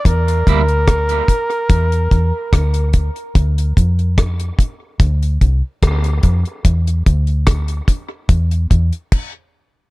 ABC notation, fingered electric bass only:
X:1
M:4/4
L:1/16
Q:1/4=73
K:Dm
V:1 name="Fingered electric bass" clef=bass
E,,2 D,,4 z2 E,,2 E,, z D,,3 z | D,,2 F,,4 z2 D,,2 C,, z D,,2 F,, z | E,,2 D,,4 z2 E,,2 E,, z4 z |]